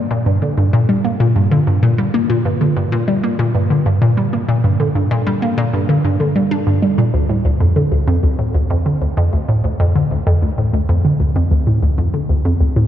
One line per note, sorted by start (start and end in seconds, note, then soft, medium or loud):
0.11 0.19 A#2 loud
0.26 0.34 G2 medium
0.42 0.50 D3 medium
0.58 0.65 G2 medium
0.73 0.85 A#2 loud
0.89 0.97 G3 medium
1.05 1.16 A#3 medium
1.20 1.28 A#2 loud
1.36 1.44 G2 medium
1.51 1.59 D3 medium
1.67 1.75 G2 medium
1.83 1.94 A#2 loud
1.98 2.06 G3 medium
2.14 2.26 A#3 medium
2.30 2.37 A#2 loud
2.45 2.53 G2 medium
2.61 2.69 D3 medium
2.76 2.84 G2 medium
2.92 3.04 A#2 loud
3.08 3.16 G3 medium
3.23 3.35 A#3 medium
3.39 3.47 A#2 loud
3.55 3.62 G2 medium
3.70 3.78 D3 medium
3.86 3.94 G2 medium
4.02 4.13 A#2 loud
4.17 4.25 G3 medium
4.33 4.45 A#3 medium
4.48 4.56 A#2 loud
4.64 4.72 G2 medium
4.80 4.87 D3 medium
4.95 5.03 G2 medium
5.11 5.23 A#2 loud
5.27 5.34 G3 medium
5.42 5.54 A#3 medium
5.58 5.66 A#2 loud
5.73 5.81 G2 medium
5.89 5.97 D3 medium
6.04 6.12 G2 medium
6.20 6.32 D3 medium
6.36 6.44 G3 medium
6.51 6.56 D4 medium
6.67 6.75 G2 medium
6.82 6.94 G3 medium
6.98 7.03 A#2 medium
7.14 7.22 D2 medium
7.29 7.37 A2 medium
7.45 7.53 D2 medium
7.61 7.72 F2 loud
7.76 7.84 D3 medium
7.92 8.00 D2 medium
8.08 8.15 F2 loud
8.23 8.31 D2 medium
8.39 8.47 A2 medium
8.55 8.62 D2 medium
8.70 8.82 F2 loud
8.86 8.94 D3 medium
9.02 9.09 D2 medium
9.17 9.25 F2 loud
9.33 9.41 D2 medium
9.49 9.56 A2 medium
9.64 9.72 D2 medium
9.80 9.91 F2 loud
9.95 10.03 D3 medium
10.11 10.19 D2 medium
10.27 10.34 F2 loud
10.42 10.50 D2 medium
10.58 10.66 A2 medium
10.73 10.81 D2 medium
10.89 11.01 F2 loud
11.05 11.13 D3 medium
11.20 11.28 D2 medium
11.36 11.44 F2 loud
11.51 11.59 D2 medium
11.67 11.75 A2 medium
11.83 11.91 D2 medium
11.98 12.10 F2 loud
12.14 12.22 D3 medium
12.29 12.37 D2 medium
12.45 12.53 F2 loud
12.60 12.69 D2 medium
12.76 12.84 A2 medium